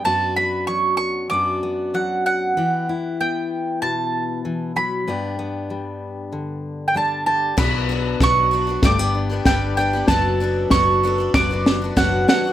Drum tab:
CC |--------|--------|--------|x-------|
SD |--------|--------|--------|o-o-o-o-|
BD |--------|--------|--------|o-o-o-o-|

CC |--------|
SD |o-o-oooo|
BD |o-o-o-o-|